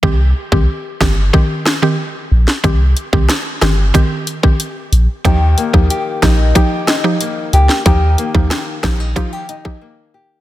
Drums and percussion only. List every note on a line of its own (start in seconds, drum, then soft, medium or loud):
0.03 kick loud
0.52 kick medium
1.01 kick medium
1.01 cross-stick loud
1.01 snare loud
1.34 kick medium
1.66 cross-stick medium
1.66 snare loud
2.48 snare medium
2.64 kick loud
2.64 closed hi-hat medium
2.97 closed hi-hat soft
3.13 kick medium
3.29 cross-stick medium
3.29 snare loud
3.29 closed hi-hat medium
3.62 cross-stick medium
3.62 snare loud
3.62 closed hi-hat medium
3.95 kick medium
3.95 closed hi-hat medium
4.27 closed hi-hat medium
4.43 kick medium
4.60 closed hi-hat medium
4.93 closed hi-hat soft
5.25 kick loud
5.25 closed hi-hat medium
5.58 closed hi-hat medium
5.74 kick medium
5.90 closed hi-hat medium
6.22 kick medium
6.22 cross-stick medium
6.22 snare loud
6.22 closed hi-hat medium
6.55 kick medium
6.55 closed hi-hat medium
6.87 cross-stick medium
6.87 snare loud
6.87 closed hi-hat medium
7.21 closed hi-hat medium
7.53 closed hi-hat soft
7.69 snare medium
7.86 kick loud
7.86 closed hi-hat medium
8.18 closed hi-hat medium
8.35 kick medium
8.50 cross-stick medium
8.50 snare loud
8.50 closed hi-hat medium
8.83 kick medium
8.83 cross-stick medium
8.83 snare loud
8.83 closed hi-hat medium
9.16 kick medium
9.16 closed hi-hat medium
9.49 closed hi-hat medium
9.65 kick medium
9.65 cross-stick medium